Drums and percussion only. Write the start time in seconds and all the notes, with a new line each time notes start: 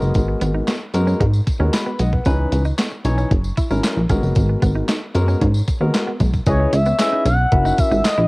0.02 tambourine
0.14 kick, closed hi-hat, tambourine
0.41 closed hi-hat, tambourine
0.67 snare, clap, closed hi-hat, tambourine
0.94 closed hi-hat, tambourine
1.07 tambourine
1.20 kick, closed hi-hat
1.33 tambourine
1.47 kick, closed hi-hat, tambourine
1.73 snare, clap, closed hi-hat, tambourine
1.99 closed hi-hat, tambourine
2.13 kick
2.25 kick, closed hi-hat, tambourine
2.52 closed hi-hat, tambourine
2.65 tambourine
2.78 snare, clap, closed hi-hat, tambourine
3.04 closed hi-hat, tambourine
3.18 tambourine
3.31 kick, closed hi-hat
3.44 tambourine
3.57 kick, closed hi-hat, tambourine
3.70 tambourine
3.83 snare, clap, closed hi-hat, tambourine
4.09 kick, closed hi-hat, tambourine
4.23 tambourine
4.35 kick, closed hi-hat, tambourine
4.62 kick, closed hi-hat, tambourine
4.88 snare, clap, closed hi-hat, tambourine
5.15 closed hi-hat, tambourine
5.28 tambourine
5.42 kick, closed hi-hat
5.54 tambourine
5.68 kick, closed hi-hat, tambourine
5.94 snare, clap, closed hi-hat, tambourine
6.20 kick, closed hi-hat, tambourine
6.34 kick, tambourine
6.46 kick, closed hi-hat, tambourine
6.73 closed hi-hat, tambourine
6.86 tambourine
6.99 snare, clap, closed hi-hat, tambourine
7.25 closed hi-hat, tambourine
7.52 kick, closed hi-hat
7.65 tambourine
7.78 kick, closed hi-hat, tambourine
7.92 tambourine
8.04 snare, clap, closed hi-hat, tambourine